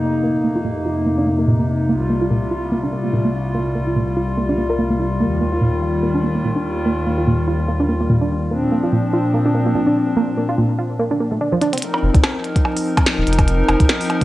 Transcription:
Already playing: F2 C3 A#3 D#4
0.24 A#3
0.44 A#3
0.56 F4
0.65 A#2
0.86 F4
1.06 A#3
1.18 D4
1.27 A#3
1.39 A#3
1.48 A#2
1.59 A#3
1.89 C2 G3 A#3 F4
2.10 A#3
2.21 F4
2.31 A#2
2.51 F4
2.72 A#3
2.84 D4
2.93 A#3
3.04 A#3
3.13 A#2
3.25 A#3
3.55 A#3
3.75 A#3
3.87 F4
3.96 A#2
4.17 F4
4.37 A#3
4.49 D4
4.58 A#3
4.70 A#4
4.79 A#3
4.90 A#3
4.99 F4
5.20 D#2 D#3 A#3
5.41 A#3
5.52 F4
5.62 A#2
5.82 F4
6.03 A#3
6.15 D4
6.24 A#3
6.35 A#3
6.44 A#2
6.56 D4
6.86 A#3
7.06 A#3
7.18 F4
7.27 A#2
7.48 F4
7.68 A#3
7.80 D4
7.89 A#3
8.01 A#3
8.10 A#2
8.21 D4
8.51 A#2 F3 A#3 C4 D4
8.72 A#3
8.83 F4
8.93 A#2
9.13 F4
9.34 A#3
9.45 D4
9.55 A#3
9.66 A#3
9.75 A#2
9.87 D4
10.17 A#3
10.37 A#3
10.49 F4
10.58 A#2
10.79 F4
10.99 A#3
11.11 D4
11.20 A#3
11.32 A3
11.41 D4
11.52 F3
11.62 D4, closed hi-hat
11.73 C4, closed hi-hat
11.78 closed hi-hat
11.82 F3 C4 D#4 A#4, closed hi-hat
11.94 percussion blips
12.03 F1
12.14 C2, kick, closed hi-hat
12.24 snare, closed hi-hat, percussion blips
12.44 closed hi-hat
12.56 kick, closed hi-hat
12.65 percussion blips
12.77 open hi-hat
12.97 kick, closed hi-hat, percussion blips
13.06 snare, closed hi-hat
13.18 D#1
13.27 F1, closed hi-hat
13.33 closed hi-hat
13.39 kick, closed hi-hat, percussion blips
13.48 closed hi-hat
13.68 F1, closed hi-hat, percussion blips
13.80 C2, kick, closed hi-hat
13.89 snare, closed hi-hat
14.01 open hi-hat
14.10 closed hi-hat, percussion blips

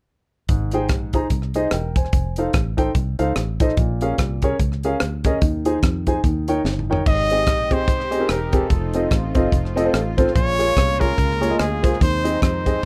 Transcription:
0.49 G#1 G#2, kick, closed hi-hat
0.71 D#4 G#4 C5 G5, closed hi-hat
0.89 A#1, kick, cross-stick, closed hi-hat
1.13 D#4 G#4 C5 A#5, kick, closed hi-hat
1.30 C2, kick, closed hi-hat
1.42 cross-stick
1.54 D#4 G#4 C5 D#5, closed hi-hat
1.71 E1 A#4 G5, cross-stick, closed hi-hat
1.96 C5 G#5, kick, closed hi-hat
2.05 cross-stick
2.13 F1, kick, closed hi-hat
2.36 D#4 A4 C5 F5, closed hi-hat
2.53 A1, kick, cross-stick, closed hi-hat
2.77 D#4 A4 C5 G5, kick, closed hi-hat
2.95 C2, kick, closed hi-hat
3.19 C#2 D#4 A4 C5 F5, closed hi-hat
3.36 A1, cross-stick, closed hi-hat
3.60 D#4 A4 C5 D#5, kick, closed hi-hat
3.69 cross-stick
3.77 A#1 A#2, kick, closed hi-hat
4.01 C#4 G#4 A#4 F5, closed hi-hat
4.18 C2, kick, cross-stick, closed hi-hat
4.42 C#4 G#4 A#4 C#5, kick, closed hi-hat
4.60 C#2, kick, closed hi-hat
4.72 cross-stick
4.83 C#4 G#4 A#4 F5, closed hi-hat
5.00 D2, cross-stick, closed hi-hat
5.24 C#4 G#4 A#4 D#5, kick, closed hi-hat
5.42 D#2 D#3, kick, closed hi-hat
5.65 D#4 G#4 C5 G#5, closed hi-hat
5.83 F2, kick, cross-stick, closed hi-hat
6.07 D#4 G#4 C5 G#5, kick, closed hi-hat
6.24 D#2 D#3, kick, closed hi-hat
6.48 D#4 A#4 C#5 G5, closed hi-hat
6.64 G1, snare
6.79 mid tom
6.90 D#4 A#4 C#5 G5, floor tom
7.04 G#1 G#2 G#3 C4 D#4 G4 D#5, kick, crash
7.30 C4 G4 G#4 D#5, closed hi-hat
7.47 A#1, kick, cross-stick, closed hi-hat
7.71 C4 G4 G#4 C5 D#5, kick, closed hi-hat
7.88 C2, kick, closed hi-hat
8.00 cross-stick
8.11 C4 G4 G#4 D#5, closed hi-hat
8.19 C4 G4 G#4 A#4
8.29 E1 A#4, cross-stick, closed hi-hat
8.52 C4 G4 G#4 A4 A#4, kick, closed hi-hat
8.68 F1 A3 F4, kick, closed hi-hat
8.93 C4 F4 A4 D#5, closed hi-hat
9.11 A1, kick, cross-stick, closed hi-hat
9.35 G1 C4 F4 A4 D#5, kick, closed hi-hat
9.52 F1, kick, closed hi-hat
9.65 cross-stick
9.76 C4 F4 A4 D#5, closed hi-hat
9.85 C4 F4 A4 C5
9.93 A1, cross-stick, closed hi-hat
10.18 C4 F4 A4 C5, kick, closed hi-hat
10.28 cross-stick
10.35 A#1 A#2 G#3 A#3 C#4 C#5, kick, closed hi-hat
10.59 A#3 F4 G#4 C#5, closed hi-hat
10.76 C2, kick, cross-stick, closed hi-hat
11.00 A#3 F4 G#4 A#4 C#5, kick, closed hi-hat
11.18 C#2, kick, closed hi-hat
11.31 cross-stick
11.41 A#3 F4 G#4 C#5, closed hi-hat
11.50 A#3 F4 G#4 D#5
11.59 D2 G#4, cross-stick, closed hi-hat
11.82 A#3 F4 G#4 C5, kick, closed hi-hat
11.93 cross-stick
12.00 D#2 D#3 C4 D#4 C5, kick, closed hi-hat
12.24 C4 D#4 G#4 D#5, closed hi-hat
12.42 F2 C5, kick, cross-stick, closed hi-hat
12.66 C4 D#4 G#4 D#5, kick, closed hi-hat

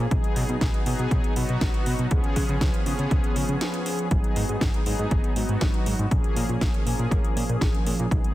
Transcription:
0.10 B1 F#3 B3 D#4 G#4, kick, closed hi-hat
0.24 closed hi-hat
0.36 B2, open hi-hat
0.49 B2, closed hi-hat
0.61 B1, kick, snare, closed hi-hat
0.74 closed hi-hat
0.86 B2 F#3 B3 D#4 G#4, open hi-hat
0.99 B2, closed hi-hat
1.11 B1, kick, closed hi-hat
1.24 closed hi-hat
1.35 B2 F#3 B3 D#4 F#4, open hi-hat
1.49 B2, closed hi-hat
1.61 B1, kick, snare, closed hi-hat
1.74 closed hi-hat
1.86 B2, open hi-hat
1.99 B2, closed hi-hat
2.10 C#2 F3 B3 C#4 G#4, kick, closed hi-hat
2.24 closed hi-hat
2.36 C#3, kick, open hi-hat
2.49 C#3, closed hi-hat
2.61 C#2, kick, snare, closed hi-hat
2.74 closed hi-hat
2.85 C#3 F3 B3 C#4 G#4, open hi-hat
2.99 C#3, closed hi-hat
3.11 C#2, kick, closed hi-hat
3.24 closed hi-hat
3.36 C#3, open hi-hat
3.49 C#3, closed hi-hat
3.61 snare, closed hi-hat
3.74 closed hi-hat
3.86 open hi-hat
3.99 closed hi-hat
4.10 G#1 F#3 B3 D#4 G#4, kick, closed hi-hat
4.24 closed hi-hat
4.36 G#2, open hi-hat
4.49 G#2, closed hi-hat
4.61 G#1, kick, snare, closed hi-hat
4.74 closed hi-hat
4.86 G#2 F#3 B3 D#4 G#4, open hi-hat
4.99 G#2, closed hi-hat
5.11 G#1, kick, closed hi-hat
5.24 closed hi-hat
5.35 G#2 F#3 B3 D#4 F#4, open hi-hat
5.49 G#2, closed hi-hat
5.61 G#1, kick, snare, closed hi-hat
5.74 closed hi-hat
5.86 G#2, open hi-hat
5.99 G#2, closed hi-hat
6.10 A#1 F3 A#3 C#4 G#4, kick, closed hi-hat
6.24 closed hi-hat
6.36 A#2, open hi-hat
6.49 A#2, closed hi-hat
6.61 A#1, kick, snare, closed hi-hat
6.74 closed hi-hat
6.85 A#2 F3 A#3 C#4 G#4, open hi-hat
6.99 A#2, closed hi-hat
7.11 A#1, kick, closed hi-hat
7.25 closed hi-hat
7.36 A#2, open hi-hat
7.49 A#2, closed hi-hat
7.61 A#1, kick, snare, closed hi-hat
7.74 closed hi-hat
7.87 A#2, open hi-hat
7.99 A#2, closed hi-hat
8.10 B1 F#3 B3 D#4 G#4, kick, closed hi-hat
8.24 closed hi-hat

